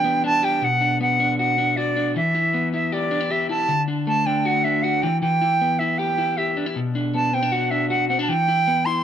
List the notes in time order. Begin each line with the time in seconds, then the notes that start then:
Already playing: E3 D4 G4 G5
0.04 B3
0.24 D4 A5
0.43 G4 G5
0.62 B2 F#5
0.81 D4
1.01 B3 F#5
1.20 D4
1.39 F#4 F#5
1.58 D4
1.77 F#4 D5
1.96 D4
2.16 E3 E5
2.35 E4
2.54 B3
2.74 E4 E5
2.92 G4 D5
3.11 D4
3.21 E4
3.31 G4 E5
3.49 E4 A5
3.69 D3
3.88 D4
4.07 A3 A5
4.26 D4 G5
4.45 F#4 F#5
4.64 D4 E5
4.83 F#4 F#5
5.02 E3 G5
5.21 E3 G5
5.42 E4
5.61 B3
5.79 E4 E5
5.98 G4 G5
6.18 E4
6.37 G4 E5
6.57 D4
6.66 E4
6.76 B2
6.95 D4
7.14 B3 A5
7.33 C4 G5
7.43 D4
7.52 F#4 F#5
7.71 D4 E5
7.90 F#4 F#5
8.09 C4 F#5
8.19 D4 A5
8.29 E3 G5
8.48 E4
8.68 B3
8.85 E4 C6